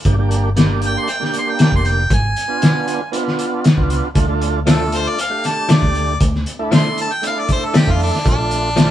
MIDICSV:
0, 0, Header, 1, 6, 480
1, 0, Start_track
1, 0, Tempo, 513259
1, 47, Time_signature, 4, 2, 24, 8
1, 8331, End_track
2, 0, Start_track
2, 0, Title_t, "Harmonica"
2, 0, Program_c, 0, 22
2, 805, Note_on_c, 0, 79, 75
2, 925, Note_on_c, 0, 84, 90
2, 939, Note_off_c, 0, 79, 0
2, 1043, Note_on_c, 0, 79, 82
2, 1057, Note_off_c, 0, 84, 0
2, 1140, Note_off_c, 0, 79, 0
2, 1169, Note_on_c, 0, 79, 79
2, 1260, Note_off_c, 0, 79, 0
2, 1294, Note_on_c, 0, 84, 65
2, 1408, Note_on_c, 0, 79, 79
2, 1422, Note_off_c, 0, 84, 0
2, 1499, Note_off_c, 0, 79, 0
2, 1519, Note_on_c, 0, 79, 82
2, 1618, Note_off_c, 0, 79, 0
2, 1645, Note_on_c, 0, 84, 83
2, 1756, Note_on_c, 0, 79, 77
2, 1770, Note_off_c, 0, 84, 0
2, 1974, Note_off_c, 0, 79, 0
2, 2000, Note_on_c, 0, 80, 100
2, 2914, Note_off_c, 0, 80, 0
2, 4394, Note_on_c, 0, 69, 79
2, 4640, Note_on_c, 0, 72, 96
2, 4654, Note_off_c, 0, 69, 0
2, 4758, Note_on_c, 0, 74, 94
2, 4772, Note_off_c, 0, 72, 0
2, 4853, Note_off_c, 0, 74, 0
2, 4870, Note_on_c, 0, 77, 91
2, 5112, Note_on_c, 0, 81, 88
2, 5126, Note_off_c, 0, 77, 0
2, 5353, Note_on_c, 0, 74, 93
2, 5367, Note_off_c, 0, 81, 0
2, 5805, Note_off_c, 0, 74, 0
2, 6309, Note_on_c, 0, 84, 96
2, 6530, Note_off_c, 0, 84, 0
2, 6558, Note_on_c, 0, 81, 92
2, 6674, Note_on_c, 0, 79, 94
2, 6688, Note_off_c, 0, 81, 0
2, 6771, Note_off_c, 0, 79, 0
2, 6796, Note_on_c, 0, 77, 94
2, 6910, Note_on_c, 0, 74, 85
2, 6924, Note_off_c, 0, 77, 0
2, 7009, Note_off_c, 0, 74, 0
2, 7034, Note_on_c, 0, 72, 86
2, 7153, Note_on_c, 0, 69, 88
2, 7167, Note_off_c, 0, 72, 0
2, 7270, Note_on_c, 0, 67, 92
2, 7284, Note_off_c, 0, 69, 0
2, 7396, Note_on_c, 0, 65, 89
2, 7411, Note_off_c, 0, 67, 0
2, 7492, Note_off_c, 0, 65, 0
2, 7506, Note_on_c, 0, 62, 82
2, 7728, Note_off_c, 0, 62, 0
2, 7753, Note_on_c, 0, 62, 104
2, 8331, Note_off_c, 0, 62, 0
2, 8331, End_track
3, 0, Start_track
3, 0, Title_t, "Tonewheel organ"
3, 0, Program_c, 1, 16
3, 45, Note_on_c, 1, 58, 72
3, 51, Note_on_c, 1, 62, 67
3, 52, Note_on_c, 1, 67, 81
3, 145, Note_off_c, 1, 58, 0
3, 148, Note_off_c, 1, 62, 0
3, 149, Note_off_c, 1, 67, 0
3, 170, Note_on_c, 1, 58, 77
3, 173, Note_on_c, 1, 62, 64
3, 182, Note_on_c, 1, 67, 77
3, 461, Note_off_c, 1, 58, 0
3, 463, Note_off_c, 1, 62, 0
3, 467, Note_off_c, 1, 67, 0
3, 524, Note_on_c, 1, 58, 96
3, 529, Note_on_c, 1, 62, 85
3, 531, Note_on_c, 1, 67, 105
3, 1013, Note_off_c, 1, 58, 0
3, 1016, Note_off_c, 1, 62, 0
3, 1017, Note_off_c, 1, 67, 0
3, 1119, Note_on_c, 1, 58, 61
3, 1125, Note_on_c, 1, 67, 77
3, 1127, Note_on_c, 1, 62, 56
3, 1903, Note_off_c, 1, 58, 0
3, 1906, Note_off_c, 1, 67, 0
3, 1907, Note_off_c, 1, 62, 0
3, 2319, Note_on_c, 1, 59, 85
3, 2326, Note_on_c, 1, 62, 74
3, 2332, Note_on_c, 1, 65, 88
3, 2812, Note_off_c, 1, 59, 0
3, 2815, Note_off_c, 1, 62, 0
3, 2818, Note_off_c, 1, 65, 0
3, 2915, Note_on_c, 1, 59, 83
3, 2921, Note_on_c, 1, 62, 75
3, 2921, Note_on_c, 1, 65, 104
3, 3409, Note_off_c, 1, 59, 0
3, 3412, Note_off_c, 1, 62, 0
3, 3412, Note_off_c, 1, 65, 0
3, 3521, Note_on_c, 1, 59, 89
3, 3526, Note_on_c, 1, 62, 75
3, 3530, Note_on_c, 1, 65, 102
3, 3816, Note_off_c, 1, 59, 0
3, 3819, Note_off_c, 1, 62, 0
3, 3821, Note_off_c, 1, 65, 0
3, 3878, Note_on_c, 1, 57, 86
3, 3885, Note_on_c, 1, 62, 69
3, 3887, Note_on_c, 1, 65, 82
3, 3981, Note_off_c, 1, 57, 0
3, 3985, Note_off_c, 1, 62, 0
3, 3986, Note_off_c, 1, 65, 0
3, 4001, Note_on_c, 1, 57, 84
3, 4009, Note_on_c, 1, 62, 78
3, 4012, Note_on_c, 1, 65, 90
3, 4296, Note_off_c, 1, 57, 0
3, 4300, Note_off_c, 1, 62, 0
3, 4302, Note_off_c, 1, 65, 0
3, 4353, Note_on_c, 1, 57, 80
3, 4364, Note_on_c, 1, 62, 74
3, 4365, Note_on_c, 1, 65, 76
3, 4847, Note_off_c, 1, 57, 0
3, 4853, Note_off_c, 1, 62, 0
3, 4854, Note_off_c, 1, 65, 0
3, 4954, Note_on_c, 1, 57, 67
3, 4961, Note_on_c, 1, 62, 65
3, 4962, Note_on_c, 1, 67, 69
3, 5740, Note_off_c, 1, 57, 0
3, 5744, Note_off_c, 1, 62, 0
3, 5745, Note_off_c, 1, 67, 0
3, 6164, Note_on_c, 1, 57, 82
3, 6164, Note_on_c, 1, 62, 70
3, 6167, Note_on_c, 1, 64, 90
3, 6654, Note_off_c, 1, 57, 0
3, 6654, Note_off_c, 1, 62, 0
3, 6655, Note_off_c, 1, 64, 0
3, 6749, Note_on_c, 1, 57, 68
3, 6759, Note_on_c, 1, 62, 65
3, 6763, Note_on_c, 1, 64, 83
3, 7245, Note_off_c, 1, 57, 0
3, 7250, Note_off_c, 1, 62, 0
3, 7252, Note_off_c, 1, 64, 0
3, 7362, Note_on_c, 1, 57, 72
3, 7366, Note_on_c, 1, 64, 83
3, 7367, Note_on_c, 1, 62, 65
3, 7656, Note_off_c, 1, 57, 0
3, 7658, Note_off_c, 1, 62, 0
3, 7658, Note_off_c, 1, 64, 0
3, 7709, Note_on_c, 1, 57, 68
3, 7712, Note_on_c, 1, 62, 57
3, 7716, Note_on_c, 1, 65, 72
3, 7816, Note_off_c, 1, 57, 0
3, 7818, Note_off_c, 1, 62, 0
3, 7820, Note_off_c, 1, 65, 0
3, 7837, Note_on_c, 1, 57, 63
3, 7838, Note_on_c, 1, 62, 59
3, 7842, Note_on_c, 1, 65, 73
3, 8133, Note_off_c, 1, 57, 0
3, 8134, Note_off_c, 1, 62, 0
3, 8136, Note_off_c, 1, 65, 0
3, 8190, Note_on_c, 1, 57, 77
3, 8193, Note_on_c, 1, 62, 72
3, 8199, Note_on_c, 1, 65, 81
3, 8331, Note_off_c, 1, 57, 0
3, 8331, Note_off_c, 1, 62, 0
3, 8331, Note_off_c, 1, 65, 0
3, 8331, End_track
4, 0, Start_track
4, 0, Title_t, "Clean electric guitar"
4, 0, Program_c, 2, 27
4, 4366, Note_on_c, 2, 53, 79
4, 4371, Note_on_c, 2, 57, 86
4, 4375, Note_on_c, 2, 62, 87
4, 4512, Note_off_c, 2, 53, 0
4, 4515, Note_off_c, 2, 57, 0
4, 4517, Note_off_c, 2, 62, 0
4, 5319, Note_on_c, 2, 53, 78
4, 5328, Note_on_c, 2, 57, 78
4, 5331, Note_on_c, 2, 62, 87
4, 5468, Note_off_c, 2, 53, 0
4, 5473, Note_off_c, 2, 57, 0
4, 5474, Note_off_c, 2, 62, 0
4, 6280, Note_on_c, 2, 53, 71
4, 6289, Note_on_c, 2, 57, 80
4, 6294, Note_on_c, 2, 62, 84
4, 6429, Note_off_c, 2, 53, 0
4, 6433, Note_off_c, 2, 57, 0
4, 6436, Note_off_c, 2, 62, 0
4, 7238, Note_on_c, 2, 53, 74
4, 7241, Note_on_c, 2, 57, 82
4, 7247, Note_on_c, 2, 62, 75
4, 7387, Note_off_c, 2, 53, 0
4, 7389, Note_off_c, 2, 57, 0
4, 7392, Note_off_c, 2, 62, 0
4, 8193, Note_on_c, 2, 53, 82
4, 8199, Note_on_c, 2, 57, 78
4, 8205, Note_on_c, 2, 62, 91
4, 8331, Note_off_c, 2, 53, 0
4, 8331, Note_off_c, 2, 57, 0
4, 8331, Note_off_c, 2, 62, 0
4, 8331, End_track
5, 0, Start_track
5, 0, Title_t, "Fingered electric bass"
5, 0, Program_c, 3, 33
5, 49, Note_on_c, 3, 31, 107
5, 893, Note_off_c, 3, 31, 0
5, 1606, Note_on_c, 3, 29, 80
5, 1922, Note_off_c, 3, 29, 0
5, 1964, Note_on_c, 3, 32, 105
5, 2176, Note_off_c, 3, 32, 0
5, 3525, Note_on_c, 3, 37, 86
5, 3738, Note_off_c, 3, 37, 0
5, 3885, Note_on_c, 3, 38, 114
5, 4731, Note_off_c, 3, 38, 0
5, 5445, Note_on_c, 3, 38, 82
5, 5761, Note_off_c, 3, 38, 0
5, 5805, Note_on_c, 3, 38, 102
5, 6016, Note_off_c, 3, 38, 0
5, 7363, Note_on_c, 3, 41, 78
5, 7576, Note_off_c, 3, 41, 0
5, 7718, Note_on_c, 3, 34, 103
5, 8331, Note_off_c, 3, 34, 0
5, 8331, End_track
6, 0, Start_track
6, 0, Title_t, "Drums"
6, 47, Note_on_c, 9, 42, 80
6, 48, Note_on_c, 9, 36, 101
6, 141, Note_off_c, 9, 42, 0
6, 142, Note_off_c, 9, 36, 0
6, 289, Note_on_c, 9, 42, 61
6, 382, Note_off_c, 9, 42, 0
6, 530, Note_on_c, 9, 42, 83
6, 541, Note_on_c, 9, 38, 95
6, 623, Note_off_c, 9, 42, 0
6, 634, Note_off_c, 9, 38, 0
6, 763, Note_on_c, 9, 42, 58
6, 857, Note_off_c, 9, 42, 0
6, 1006, Note_on_c, 9, 42, 65
6, 1099, Note_off_c, 9, 42, 0
6, 1142, Note_on_c, 9, 38, 30
6, 1236, Note_off_c, 9, 38, 0
6, 1250, Note_on_c, 9, 42, 59
6, 1343, Note_off_c, 9, 42, 0
6, 1486, Note_on_c, 9, 42, 78
6, 1497, Note_on_c, 9, 38, 112
6, 1580, Note_off_c, 9, 42, 0
6, 1591, Note_off_c, 9, 38, 0
6, 1610, Note_on_c, 9, 36, 84
6, 1703, Note_off_c, 9, 36, 0
6, 1729, Note_on_c, 9, 42, 55
6, 1823, Note_off_c, 9, 42, 0
6, 1968, Note_on_c, 9, 36, 116
6, 1968, Note_on_c, 9, 42, 76
6, 2062, Note_off_c, 9, 36, 0
6, 2062, Note_off_c, 9, 42, 0
6, 2212, Note_on_c, 9, 42, 57
6, 2305, Note_off_c, 9, 42, 0
6, 2449, Note_on_c, 9, 42, 76
6, 2461, Note_on_c, 9, 38, 101
6, 2543, Note_off_c, 9, 42, 0
6, 2554, Note_off_c, 9, 38, 0
6, 2690, Note_on_c, 9, 42, 60
6, 2783, Note_off_c, 9, 42, 0
6, 2928, Note_on_c, 9, 42, 77
6, 3022, Note_off_c, 9, 42, 0
6, 3063, Note_on_c, 9, 38, 37
6, 3156, Note_off_c, 9, 38, 0
6, 3168, Note_on_c, 9, 42, 62
6, 3262, Note_off_c, 9, 42, 0
6, 3408, Note_on_c, 9, 42, 82
6, 3419, Note_on_c, 9, 38, 108
6, 3501, Note_off_c, 9, 42, 0
6, 3512, Note_off_c, 9, 38, 0
6, 3529, Note_on_c, 9, 36, 78
6, 3622, Note_off_c, 9, 36, 0
6, 3648, Note_on_c, 9, 42, 62
6, 3742, Note_off_c, 9, 42, 0
6, 3884, Note_on_c, 9, 42, 85
6, 3886, Note_on_c, 9, 36, 107
6, 3978, Note_off_c, 9, 42, 0
6, 3980, Note_off_c, 9, 36, 0
6, 4130, Note_on_c, 9, 42, 63
6, 4223, Note_off_c, 9, 42, 0
6, 4366, Note_on_c, 9, 42, 86
6, 4377, Note_on_c, 9, 38, 97
6, 4459, Note_off_c, 9, 42, 0
6, 4471, Note_off_c, 9, 38, 0
6, 4604, Note_on_c, 9, 42, 70
6, 4698, Note_off_c, 9, 42, 0
6, 4850, Note_on_c, 9, 42, 85
6, 4943, Note_off_c, 9, 42, 0
6, 5086, Note_on_c, 9, 42, 61
6, 5097, Note_on_c, 9, 38, 34
6, 5179, Note_off_c, 9, 42, 0
6, 5190, Note_off_c, 9, 38, 0
6, 5321, Note_on_c, 9, 42, 82
6, 5332, Note_on_c, 9, 38, 104
6, 5415, Note_off_c, 9, 42, 0
6, 5426, Note_off_c, 9, 38, 0
6, 5447, Note_on_c, 9, 36, 77
6, 5541, Note_off_c, 9, 36, 0
6, 5564, Note_on_c, 9, 42, 50
6, 5657, Note_off_c, 9, 42, 0
6, 5803, Note_on_c, 9, 42, 87
6, 5805, Note_on_c, 9, 36, 107
6, 5896, Note_off_c, 9, 42, 0
6, 5898, Note_off_c, 9, 36, 0
6, 5939, Note_on_c, 9, 38, 27
6, 6032, Note_off_c, 9, 38, 0
6, 6044, Note_on_c, 9, 42, 56
6, 6137, Note_off_c, 9, 42, 0
6, 6283, Note_on_c, 9, 42, 72
6, 6295, Note_on_c, 9, 38, 100
6, 6377, Note_off_c, 9, 42, 0
6, 6388, Note_off_c, 9, 38, 0
6, 6525, Note_on_c, 9, 42, 62
6, 6618, Note_off_c, 9, 42, 0
6, 6763, Note_on_c, 9, 42, 78
6, 6856, Note_off_c, 9, 42, 0
6, 7001, Note_on_c, 9, 42, 58
6, 7003, Note_on_c, 9, 36, 76
6, 7094, Note_off_c, 9, 42, 0
6, 7097, Note_off_c, 9, 36, 0
6, 7241, Note_on_c, 9, 42, 78
6, 7252, Note_on_c, 9, 38, 121
6, 7334, Note_off_c, 9, 42, 0
6, 7346, Note_off_c, 9, 38, 0
6, 7364, Note_on_c, 9, 36, 75
6, 7458, Note_off_c, 9, 36, 0
6, 7482, Note_on_c, 9, 46, 76
6, 7575, Note_off_c, 9, 46, 0
6, 7614, Note_on_c, 9, 38, 32
6, 7707, Note_off_c, 9, 38, 0
6, 7720, Note_on_c, 9, 42, 81
6, 7721, Note_on_c, 9, 36, 119
6, 7813, Note_off_c, 9, 42, 0
6, 7815, Note_off_c, 9, 36, 0
6, 7958, Note_on_c, 9, 42, 65
6, 8052, Note_off_c, 9, 42, 0
6, 8202, Note_on_c, 9, 42, 89
6, 8213, Note_on_c, 9, 38, 99
6, 8296, Note_off_c, 9, 42, 0
6, 8307, Note_off_c, 9, 38, 0
6, 8331, End_track
0, 0, End_of_file